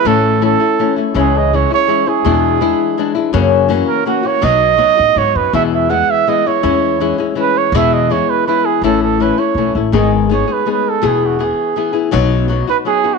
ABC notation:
X:1
M:3/4
L:1/16
Q:1/4=164
K:E
V:1 name="Trumpet"
A4 A6 z2 | G2 d2 c2 c4 G2- | G8- G2 z2 | z6 ^A2 F2 c2 |
d8 c2 B2 | e2 e2 f2 e2 d2 c2- | c6 z2 B2 c2 | e2 d2 c2 B2 B2 G2 |
A2 A2 B2 c4 z2 | d2 z2 c2 B2 B2 A2 | G2 F2 G6 z2 | z6 B2 G3 F |]
V:2 name="Nylon-string guitar"
[A,,E,A,CE]4 [E,A,CE]2 [A,CE]2 [E,A,CE]2 [A,CE]2 | [C,E,G,CE]4 [E,G,CE]2 [G,CE]2 [E,G,CE]2 [G,CE]2 | [E,,B,,E,G,=DE]4 [E,G,DE]4 [E,G,DE]2 [E,G,DE]2 | [F,,C,E,^A,CF]4 [E,A,CF]4 [E,A,CF]2 [E,A,CF]2 |
[B,,F,B,DF]4 [F,B,DF]2 [B,DF]2 [F,B,DF]4 | [E,,B,,E,G,B,E]4 [E,G,B,E]4 [E,G,B,E]2 [E,G,B,E]2 | [E,G,CE]4 [E,G,CE]2 [G,CE]2 [E,G,CE]4 | [E,,B,,E,G,B,E]4 [E,G,B,E]4 [E,G,B,E]4 |
[A,,E,A,CE]4 [E,A,CE]2 [A,CE]2 [E,A,CE]2 [A,CE]2 | [G,,D,G,B,DG]4 [G,B,DG]2 [G,B,DG]2 [G,B,DG]4 | [E,,B,,E,B,EG]4 [E,B,EG]4 [E,B,EG]2 [E,B,EG]2 | [B,,F,B,DF]4 [F,B,DF]2 [B,DF]2 [F,B,DF]2 [B,DF]2 |]
V:3 name="Upright bass" clef=bass
A,,,8 z4 | C,,8 z4 | E,,8 z4 | F,,8 z4 |
B,,,6 A,,2 G,,2 F,,2 | E,,8 z4 | E,,8 z4 | E,,8 z4 |
A,,,8 B,,,2 A,,,2 | G,,,8 z4 | E,,,8 z4 | B,,,8 z4 |]